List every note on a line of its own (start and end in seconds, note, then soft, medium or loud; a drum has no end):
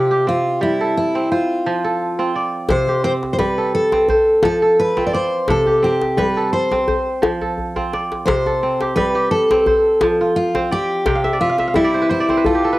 0.00 1.35 C3 medium
0.00 0.27 C4 medium
0.00 0.93 F4 medium
0.00 0.28 G4 medium
0.00 0.38 A4 medium
0.00 0.68 D5 medium
0.11 1.52 G4 medium
0.27 1.15 C4 medium
0.27 0.60 F4 medium
0.61 1.35 G3 medium
0.61 0.96 E4 medium
0.81 1.84 A4 medium
0.97 1.31 E4 medium
1.15 2.19 C4 medium
1.32 2.31 F4 medium
1.32 2.51 C5 medium
1.67 2.74 F3 medium
1.85 3.16 A4 medium
2.19 3.03 C4 medium
2.19 3.71 F4 medium
2.36 3.46 D5 medium
2.69 4.13 C3 medium
2.69 3.03 C5 medium
2.69 djembe slap medium
2.69 djembe bass medium
2.88 4.30 G4 medium
2.88 djembe tone medium
3.04 3.92 C4 medium
3.04 3.12 C5 loud
3.23 djembe slap soft
3.33 3.38 C5 medium
3.39 4.13 G3 medium
3.39 3.74 B4 medium
3.39 djembe slap soft
3.39 djembe tone medium
3.58 4.62 A4 medium
3.75 4.44 A4 medium
3.92 4.96 C4 medium
3.92 djembe slap medium
3.92 djembe tone medium
4.08 5.28 C5 medium
4.08 djembe bass medium
4.43 5.53 F3 medium
4.43 4.77 A4 medium
4.43 djembe slap medium
4.43 djembe tone medium
4.62 5.94 A4 medium
4.62 djembe slap soft
4.80 5.06 B4 medium
4.97 5.82 C4 medium
4.97 6.48 F4 medium
4.97 djembe slap soft
4.97 djembe tone soft
5.07 5.13 D5 medium
5.13 5.50 C5 medium
5.13 6.24 D5 medium
5.13 djembe slap soft
5.48 6.92 C3 medium
5.48 5.82 A4 medium
5.48 djembe slap medium
5.48 djembe bass medium
5.66 7.08 G4 medium
5.66 djembe tone soft
5.83 6.72 C4 medium
5.83 6.19 G4 medium
6.01 djembe slap soft
6.17 6.92 G3 medium
6.17 6.50 B4 medium
6.17 djembe tone medium
6.36 7.41 A4 medium
6.36 djembe slap soft
6.53 7.53 C5 medium
6.71 7.76 C4 medium
6.71 djembe slap soft
6.71 djembe tone medium
6.88 8.06 C5 medium
6.88 djembe bass medium
7.07 djembe slap soft
7.22 8.32 F3 medium
7.22 djembe slap medium
7.22 djembe tone medium
7.41 8.46 A4 medium
7.41 djembe bass soft
7.58 djembe bass soft
7.76 8.62 C4 medium
7.76 9.27 F4 medium
7.76 djembe bass soft
7.93 9.04 D5 medium
7.93 djembe slap medium
8.12 djembe slap medium
8.26 9.71 C3 medium
8.26 8.95 C5 medium
8.26 djembe slap medium
8.26 djembe bass medium
8.46 9.78 A4 medium
8.46 djembe tone medium
8.63 9.51 C4 medium
8.81 9.14 G4 medium
8.81 djembe slap medium
8.96 9.71 G3 medium
8.96 9.31 B4 medium
8.96 djembe slap soft
8.96 djembe tone medium
9.15 10.56 G4 medium
9.31 10.36 A4 medium
9.51 10.54 C4 medium
9.51 djembe slap medium
9.51 djembe tone medium
9.66 10.54 C5 medium
9.66 djembe bass medium
10.01 11.11 F3 medium
10.01 djembe slap medium
10.01 djembe tone medium
10.20 11.30 F4 medium
10.20 djembe slap soft
10.36 10.72 F4 medium
10.55 12.08 C4 medium
10.55 11.74 C5 medium
10.55 djembe slap soft
10.55 djembe tone soft
10.71 11.40 G4 medium
10.71 11.33 D5 medium
10.71 djembe slap soft
11.06 12.50 C3 medium
11.06 11.99 G5 medium
11.06 djembe slap medium
11.06 djembe bass medium
11.15 11.47 F5 medium
11.24 11.41 E5 medium
11.24 djembe tone medium
11.33 11.84 D5 medium
11.41 11.75 F4 medium
11.41 11.59 E5 medium
11.49 11.67 F5 medium
11.58 11.75 E5 medium
11.58 djembe slap soft
11.68 12.67 F5 medium
11.74 12.50 G3 medium
11.74 12.09 E4 medium
11.74 12.79 E5 medium
11.74 djembe slap soft
11.74 djembe tone medium
11.84 12.20 D5 medium
11.94 12.09 C5 medium
12.02 12.35 B4 medium
12.09 12.46 E4 medium
12.09 12.29 C5 medium
12.20 12.79 D5 medium
12.29 12.79 C4 medium
12.29 12.79 C5 medium
12.29 djembe tone medium
12.37 12.72 B4 medium
12.45 12.79 F4 medium
12.45 12.64 A4 medium
12.45 djembe bass medium
12.55 12.79 G4 medium
12.64 12.79 A4 medium
12.73 12.79 B4 medium